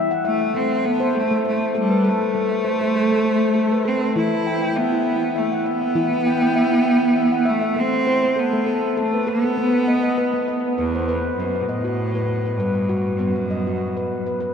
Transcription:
Already playing: G5
0.11 F#5
0.25 A3 E5
0.41 E5
0.55 A3 C4
0.85 B3 A4
1.00 C5
1.15 A3 A4
1.31 A3
1.45 A3 C5
1.75 G3 A4
1.90 B4
2.04 A4
2.09 A3
2.20 A4
2.35 A3
2.65 C5
2.81 C5
2.96 A4
3.12 A3
3.25 C5
3.55 A4
3.72 B4
3.85 C4 A4
4.02 A4
4.16 E3 E4
4.47 G5
4.62 G5
4.76 B3 E5
4.92 E4
5.36 A3 E5
5.52 F#5
5.66 B3 E5
5.81 E5
5.95 E3 E4
6.26 G5
6.42 G5
6.56 E5
6.72 E4
6.86 G5
7.16 E5
7.32 F#5
7.45 A3 E5
7.61 E5
7.76 A3 C4
8.07 C5
8.23 C5
8.36 B3 A4
8.53 A3
8.66 A4
8.97 A3 A4
9.13 B4
9.27 B3 A4
9.44 A4
9.57 B3
9.88 D#5
10.03 D#5
10.18 B4
10.34 B3
10.48 D#5
10.78 E2 B4
10.95 C5
11.08 B4
11.36 F#2 B3
11.55 B4
11.60 B2
11.66 A2 D#5
11.84 F#4
12.15 B4
12.46 B4
12.56 G2 B4
12.75 B4
12.89 F#4
13.16 G2 B3
13.27 F#2
13.36 B4
13.50 D#5
13.67 F#4
13.97 B4
14.26 B4
14.40 B4

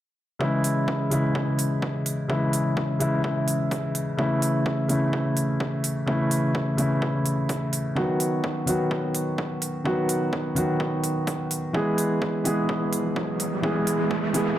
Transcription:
0.39 C#3 E3 G#3 E4, kick
0.64 open hi-hat
0.88 kick
1.10 C#3 E3 G#3 E4, open hi-hat
1.35 kick
1.59 open hi-hat
1.82 kick
2.06 open hi-hat
2.28 C#3 E3 G#3 E4, kick
2.53 open hi-hat
2.77 kick
2.99 C#3 E3 G#3 E4, open hi-hat
3.24 kick
3.48 open hi-hat
3.71 kick, open hi-hat
3.95 open hi-hat
4.17 C#3 E3 A3 E4, kick
4.42 open hi-hat
4.66 kick
4.88 C#3 E3 A3 E4, open hi-hat
5.13 kick
5.37 open hi-hat
5.60 kick
5.84 open hi-hat
6.06 C#3 E3 A3 E4, kick
6.31 open hi-hat
6.55 kick
6.77 C#3 E3 A3 E4, open hi-hat
7.02 kick
7.26 open hi-hat
7.49 kick, open hi-hat
7.73 open hi-hat
7.95 D#3 F#3 B3 F#4, kick
8.20 open hi-hat
8.44 kick
8.66 D#3 F#3 B3 F#4, open hi-hat
8.91 kick
9.15 open hi-hat
9.38 kick
9.62 open hi-hat
9.84 D#3 F#3 B3 F#4, kick
10.09 open hi-hat
10.33 kick
10.55 D#3 F#3 B3 F#4, open hi-hat
10.80 kick
11.04 open hi-hat
11.27 kick, open hi-hat
11.51 open hi-hat
11.73 E3 G#3 B3 G#4, kick, riser
11.98 open hi-hat
12.22 kick
12.44 E3 G#3 B3 G#4, open hi-hat
12.69 kick
12.93 open hi-hat
13.16 kick
13.40 open hi-hat
13.62 E3 G#3 B3 G#4, kick
13.87 open hi-hat
14.11 kick
14.33 E3 G#3 B3 G#4, open hi-hat

